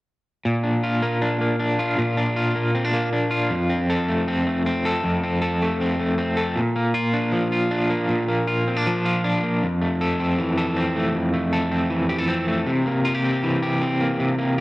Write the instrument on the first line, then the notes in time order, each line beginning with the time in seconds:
clean electric guitar
0.45 A#2
0.64 D4
0.83 F4
1.02 A#3
1.22 D4
1.41 A#3
1.60 D4
1.79 F4
1.98 A#2
2.17 D4
2.36 F4
2.55 A#3
2.75 C4
2.84 D4
2.94 A#3
3.13 D4
3.31 F4
3.50 F2
3.70 C4
3.90 A4
4.08 A3
4.28 C4
4.47 A3
4.66 C4
4.85 A4
5.04 F2
5.24 C4
5.42 A4
5.62 A3
5.81 C4
6.00 A3
6.18 C4
6.37 A4
6.56 A#2
6.76 A#3
6.94 F4
7.14 D4
7.32 F3
7.52 F4
7.71 D4
7.90 A#3
8.09 A#2
8.29 A#3
8.47 F4
8.68 C4
8.77 D4
8.87 F3
9.05 F4
9.24 D4
9.43 A#3
9.63 F2
9.82 A3
10.01 A4
10.20 C4
10.39 E3
10.58 A4
10.76 C4
10.96 A3
11.15 F2
11.34 A3
11.53 A4
11.72 C4
11.90 E3
12.09 G4
12.18 A4
12.28 C4
12.47 A3
12.67 C3
12.86 A#3
13.05 F4
13.15 G4
13.24 C4
13.44 E3
13.63 G4
13.81 C4
14.01 A#3
14.20 C3
14.38 A#3